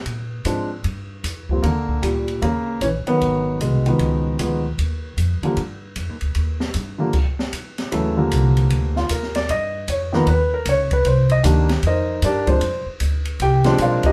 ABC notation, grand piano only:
X:1
M:4/4
L:1/8
Q:"Swing" 1/4=153
K:Eb
V:1 name="Grand piano"
z8 | [D,B,]2 [B,,G,]2 [_D,B,]2 [_F,_D] _C- | _C2 [_C,A,]4- [C,A,] z | z8 |
z8 | z4 z F B d | ^d2 _d ^A =B A d B | c e z2 [EBce]2 [DGBd] c- |
c z3 [Gg]2 [FBdf] [EGBe] |]
V:2 name="Grand piano" clef=bass
z2 [F,A,CD] z4 [F,G,B,C] | z6 z [E,_G,B]- | [E,_G,B]2 z [E,F,A,_C]3 [E,F,A,C] z | z3 [D,F,G,B,] z4 |
z3 [D,F,G,B,] z4 | [_D,_F,_G,=A,] [=D,=F,=G,B,]4 z3 | z3 [^D,F,^A,=B,] z4 | z2 [E,G,B,D] z4 [F,A,CD] |
z4 z [F,A,CD]3 |]